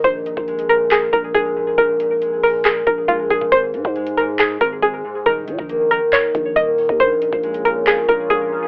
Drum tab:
HH |x-x-xxx-x-x-x---|x-x-x-o-x-x-x-x-|x-x-xxx-x-x-x---|x-x-x-x-x-x-x-o-|
CP |--------x-------|--------x-------|--------x-------|--------x-------|
BD |o--o------o-o---|o---------o-o-oo|o--o------o-o---|o--o------o-o--o|

HH |x-x-xxx-x-x-x---|
CP |--------x-------|
BD |o--o------o-o---|